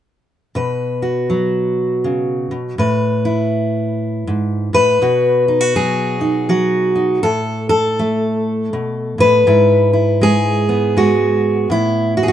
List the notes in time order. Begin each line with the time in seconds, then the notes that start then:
0.55 B2 B4
1.02 F#4
1.30 F#3
2.04 C#3
2.51 B2
2.78 A2 B4
3.25 E4
4.27 G#2
4.73 A2 B4
5.02 B2 F#4
5.48 D#4
5.61 F#4
5.75 F#3 G#4
6.21 D#4
6.49 F#3 F#4
6.95 D#4
7.23 A2 A4
7.69 A4
7.99 A3
8.73 B2
9.18 A2 B4
9.47 G#2 E4
9.93 E4
10.21 G#3 G#4
10.69 B3
10.97 G#3 F#4
11.70 A2 E4
12.17 F#4
12.23 G#4
12.28 F#4